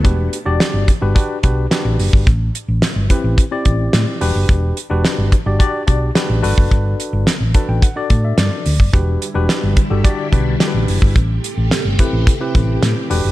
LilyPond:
<<
  \new Staff \with { instrumentName = "Tine electric piano" } { \time 4/4 \key e \minor \tempo 4 = 108 << { r1 | r1 | r1 | r4. a''16 g''16 fis''8. e''16 d''4 |
r1 | r1 | } \\ { <d' fis' g' b'>8 r16 <d' fis' g' d''>8. r16 <d' fis' g' b'>16 <d' fis' g' b'>8 <d' fis' g' b'>8 <d' fis' g' b'>4 | r4. <c' e' g' b'>8 r16 <c' e' g' d''>4~ <c' e' g' d''>16 <d' fis' g' b'>8~ | <d' fis' g' b'>8 r16 <d' fis' g' b'>8. r16 <d' fis' g' d''>16 <d' fis' g' d''>8 <d' fis' g' d''>8 <d' fis' g' b'>8 <d' fis' a' b'>8~ | <d' fis' a' b'>4 r8 <d' fis' a' b'>8 r16 <d' fis' a' d''>4. r16 |
<d' fis' g' b'>8 r16 <d' fis' g' b'>8. r16 <d' fis' g' a'>16 <d' fis' g' d''>8 <d' fis' g' b'>8 <d' fis' g' a' b'>4 | r4. <c' e' g' b'>8 r16 <c' e' g' b'>4~ <c' e' g' b'>16 <d' fis' g' b'>8 | } >> }
  \new Staff \with { instrumentName = "String machine" } { \clef bass \time 4/4 \key e \minor r1 | r1 | r1 | r1 |
<d g e'>1 | <c a g'>2.~ <c a g'>8 <d g e'>8 | }
  \new Staff \with { instrumentName = "Fingered electric bass" } { \clef bass \time 4/4 \key e \minor e,,8 r16 e,,16 r16 g,,16 r16 g,,16 r8 b,,8 r16 a,,16 fis,,16 g,,16 | a,,8 r16 a,,16 r16 g,,16 r16 a,,16 r8 a,,8 a,16 r16 e,,16 fis,,16 | e,,8 r16 e,,16 r16 g,,16 r16 g,,16 r8 b,,8 r16 a,,16 g,,16 fis,,16 | g,,8 r16 g,,16 r16 a,,16 r16 a,,16 r8 a,8 g,16 r16 d,16 fis,,16 |
e,,8 r16 e,,16 r16 g,,16 r16 g,,16 r8 b,,8 r16 a,,16 fis,,16 g,,16 | a,,8 r16 a,,16 r16 g,,16 r16 a,,16 r8 a,,8 a,16 r16 e,,16 fis,,16 | }
  \new DrumStaff \with { instrumentName = "Drums" } \drummode { \time 4/4 <hh bd>8 hh8 <hh sn>8 <hh bd>8 <hh bd>8 <hh bd>8 <hh sn>8 hho16 bd16 | <hh bd>8 hh8 <hh sn>8 <hh bd>8 <hh bd>8 <hh bd>8 <hh sn>8 hho8 | <hh bd>8 hh8 <hh sn>8 <hh bd>8 <hh bd>8 <hh bd>8 <hh sn>8 hho16 bd16 | <hh bd>8 hh8 <hh sn>8 <hh bd>8 <hh bd>8 <hh bd>8 <hh sn>8 hho16 bd16 |
<hh bd>8 hh8 <hh sn>8 <hh bd>8 <hh bd>8 <hh bd>8 <hh sn>8 hho16 bd16 | <hh bd>8 hh8 <hh sn>8 <hh bd>8 <hh bd>8 <hh bd>8 <hh sn>8 hho8 | }
>>